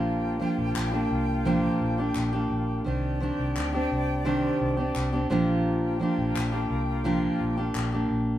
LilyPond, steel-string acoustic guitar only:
\new Staff \with { instrumentName = "Steel-string acoustic guitar" } { \time 4/4 \key g \phrygian \tempo 4 = 86 <bes, f bes d' g'>8 <f bes d' g'>8. <bes d' g'>8. <bes, f bes d' g'>8. <bes d' g'>8 <bes d' g'>8. | <ees c' d' g'>8 <ees c' d' g'>8. <c' d' g'>8. <c ees c' d' g'>8. <c' d' g'>8 <c' d' g'>16 <bes, f bes d' g'>8~ | <bes, f bes d' g'>8 <f bes d' g'>8. <bes d' g'>8. <bes, f bes d' g'>8. <bes d' g'>8 <bes d' g'>8. | }